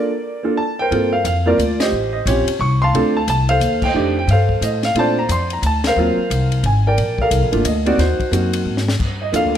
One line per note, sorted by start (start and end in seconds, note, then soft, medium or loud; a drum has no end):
0.00 0.10 A4 medium
0.00 0.56 A#4 soft
0.00 0.55 D5 medium
0.43 0.56 A#3 medium
0.43 0.57 D4 medium
0.43 0.57 F4 medium
0.43 0.57 A4 medium
0.57 0.77 A5 medium
0.79 1.24 A#4 medium
0.79 1.24 C5 medium
0.79 1.11 G5 loud
0.91 1.24 G2 medium
0.91 1.10 A#3 medium
0.91 1.11 C4 medium
0.91 1.11 F4 medium
0.91 1.12 A4 medium
0.91 ride soft
1.13 1.25 F5 medium
1.24 1.57 F2 loud
1.24 1.48 F5 medium
1.24 hi-hat pedal medium
1.24 ride medium
1.46 1.58 A#3 medium
1.46 1.58 C4 medium
1.46 1.48 F4 medium
1.46 1.92 F4 medium
1.46 1.59 A#4 medium
1.46 1.78 D5 medium
1.58 1.91 D2 medium
1.58 hi-hat pedal medium
1.58 ride medium
1.80 2.25 G4 medium
1.80 2.25 C5 medium
1.80 2.11 D#5 loud
1.80 snare medium
1.80 ride medium
1.92 2.25 A1 medium
2.13 2.27 D#5 medium
2.26 2.46 A#1 medium
2.26 2.46 C4 medium
2.26 2.46 C#4 medium
2.26 2.46 F4 medium
2.26 2.46 G4 medium
2.26 2.58 C#5 medium
2.26 hi-hat pedal medium
2.26 ride medium
2.48 muted upright bass stroke soft
2.48 ride medium
2.59 2.93 C2 loud
2.59 2.80 C#6 loud
2.82 3.26 F5 medium
2.82 3.15 A5 medium
2.82 3.13 C6 loud
2.93 3.26 D2 medium
2.93 3.13 C4 medium
2.93 3.13 D4 medium
2.93 3.14 F4 medium
2.93 3.14 A4 medium
2.93 ride medium
3.17 3.28 A5 medium
3.27 3.59 C2 medium
3.27 3.50 A5 loud
3.27 hi-hat pedal medium
3.27 ride medium
3.49 3.93 A4 medium
3.49 3.84 C5 medium
3.49 3.84 F5 loud
3.49 ride soft
3.60 3.93 D#2 medium
3.60 hi-hat pedal medium
3.60 ride medium
3.82 4.27 C5 medium
3.82 4.27 D#5 medium
3.82 4.17 G5 medium
3.82 kick medium
3.82 crash medium
3.94 4.27 F2 medium
3.94 4.13 A3 medium
3.94 4.13 D4 medium
3.94 4.14 D#4 medium
3.94 4.14 G4 medium
4.19 4.31 G5 medium
4.27 4.61 G2 medium
4.27 4.64 F5 medium
4.27 ride medium
4.32 4.81 A4 medium
4.32 4.82 C5 medium
4.49 kick soft
4.61 4.95 A2 medium
4.61 4.82 D#5 medium
4.61 hi-hat pedal medium
4.61 ride medium
4.83 4.96 F5 medium
4.83 snare medium
4.83 ride soft
4.95 5.28 A#2 medium
4.95 5.15 A3 medium
4.95 5.15 C4 medium
4.95 5.15 D4 medium
4.95 5.15 F4 medium
4.95 ride medium
4.99 5.49 C5 medium
4.99 5.49 D5 medium
4.99 5.19 A5 loud
5.19 5.31 A#5 medium
5.29 5.62 F2 loud
5.29 5.50 C6 medium
5.29 hi-hat pedal medium
5.29 ride medium
5.50 5.64 A#5 medium
5.50 ride soft
5.62 5.95 D2 medium
5.62 hi-hat pedal medium
5.62 ride medium
5.66 5.84 A5 medium
5.84 6.62 C5 medium
5.84 6.62 F5 medium
5.84 snare medium
5.84 ride medium
5.88 6.62 A#4 medium
5.96 6.16 D#2 medium
5.96 6.16 F#3 medium
5.96 6.16 A#3 medium
5.96 6.16 C4 medium
5.96 6.17 F4 medium
6.17 muted upright bass stroke soft
6.30 6.63 C2 medium
6.30 hi-hat pedal medium
6.30 ride medium
6.52 ride soft
6.63 6.96 G#1 medium
6.63 6.87 G#5 medium
6.63 ride medium
6.87 7.20 A#4 medium
6.87 7.30 D5 medium
6.87 7.18 G5 medium
6.98 7.30 A#1 medium
6.98 ride medium
7.18 7.64 A#4 medium
7.18 7.52 F5 medium
7.18 kick medium
7.23 7.64 A4 medium
7.31 7.42 C2 medium
7.31 hi-hat pedal medium
7.31 ride medium
7.42 7.53 A#1 medium
7.51 7.64 G1 medium
7.51 7.64 A3 medium
7.51 7.64 A#3 medium
7.51 7.64 D4 medium
7.51 7.65 F4 medium
7.51 ride soft
7.64 7.97 D2 medium
7.64 7.85 D#5 medium
7.64 hi-hat pedal medium
7.64 ride medium
7.86 7.98 A#3 medium
7.86 7.98 C4 medium
7.86 7.98 D#4 medium
7.86 7.98 F#4 medium
7.86 7.99 D5 medium
7.86 ride medium
7.98 8.18 D#2 medium
7.98 8.31 D#4 medium
7.98 8.31 F#4 medium
7.98 8.63 C5 medium
7.98 snare soft
7.98 ride medium
8.19 muted upright bass stroke soft
8.19 kick medium
8.19 ride soft
8.31 8.64 F#2 medium
8.31 8.82 A#3 medium
8.31 8.83 C4 soft
8.31 8.83 D#4 soft
8.31 8.83 F#4 medium
8.31 hi-hat pedal medium
8.31 ride medium
8.53 ride medium
8.65 8.98 G#2 medium
8.77 snare medium
8.88 snare medium
9.00 9.32 G2 medium
9.00 kick medium
9.00 crash medium
9.22 9.35 D#5 medium
9.32 9.45 F2 medium
9.32 9.52 A#3 medium
9.32 9.52 D4 medium
9.32 9.52 F4 medium
9.32 9.53 A4 medium
9.32 9.56 F5 loud
9.32 hi-hat pedal medium
9.32 ride medium
9.45 9.55 D2 soft